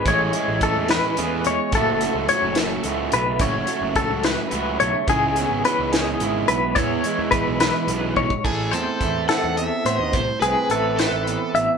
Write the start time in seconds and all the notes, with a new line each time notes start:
0.05 A1 A2 E3 G#3 A3 C#4 E4 G#4 C#5, kick, closed hi-hat
0.33 E3 G#3 A3 C#4 E4, closed hi-hat
0.48 A1
0.61 E3 A3 C#4 E4 A4, kick, closed hi-hat
0.75 E2
0.88 E3 A3 C#4 E4 B4, snare, closed hi-hat
1.17 E2 E3 A3 C#4 E4 G#4, closed hi-hat
1.44 E2 G#3 C#5, closed hi-hat
1.72 F#1 F#2 F#3 A3 C#4 F#4 A4, kick, closed hi-hat
1.76 A3 C#4 E4
2.01 F#3 A3 C#4 F#4, closed hi-hat
2.15 C#2
2.29 F#3 A3 C#4 F#4 C#5, closed hi-hat
2.43 F#1
2.55 F#3 A3 C#4 F#4 A4, snare, closed hi-hat
2.83 C#2 C#3 F#3 A3 C#4 E4 F#4, closed hi-hat
3.12 B1 A3 B4, closed hi-hat
3.39 F#1 F#2 F#3 A3 C#4 F#4 C#5, kick, closed hi-hat
3.67 F#3 A3 C#4 F#4, closed hi-hat
3.82 F#1
3.95 F#3 A3 C#4 F#4 A4, kick, closed hi-hat
4.10 C#2
4.23 F#3 A3 C#4 F#4 B4, snare, closed hi-hat
4.51 C#2 C#3 F#3 A3 C#4 E4 F#4, closed hi-hat
4.80 B1 A3 C#5, closed hi-hat
5.07 C#2 C#3 G#3 C#4 E4 G#4, kick, closed hi-hat
5.36 C#3 G#3 B3 C#4 E4, closed hi-hat
5.50 G#1
5.64 C#3 E3 G#3 C#4 E4 B4, closed hi-hat
5.79 C#2
5.92 C#3 G#3 C#4 E4 G#4, snare, closed hi-hat
6.20 G#1 G#2 C#3 G#3 C#4 E4, closed hi-hat
6.48 B1 B3 B4, closed hi-hat
6.75 E2 E3 G#3 B3 E4 C#5, kick, closed hi-hat
7.04 E3 G#3 B3 E4, closed hi-hat
7.19 E2
7.31 E3 G#3 B3 E4 B4, kick, closed hi-hat
7.46 B1
7.60 E2 E3 G#3 B3 E4 B4, snare, closed hi-hat
7.87 B1 F#2 E3 G#3 B3 E4, closed hi-hat
8.16 B1 G#2 C#5, kick
8.30 kick
8.44 A1 A2 G#4 A4, kick, crash
8.71 E2 C4 A4 C5, closed hi-hat
9.00 E2 E3 E4, kick, closed hi-hat
9.28 C4 A4 F#5, snare, closed hi-hat
9.44 E2
9.57 E2 E5, closed hi-hat
9.85 A2 B3 C5, closed hi-hat
9.99 D#2 D#5
10.13 C2 A2 C5, kick, closed hi-hat
10.41 C2 G#4 B4, closed hi-hat
10.45 C4
10.70 A1 E3 E4 A4, closed hi-hat
10.97 C4 A4 B4, snare, closed hi-hat
11.11 A1
11.27 E2, closed hi-hat
11.54 A1 B3 E5, closed hi-hat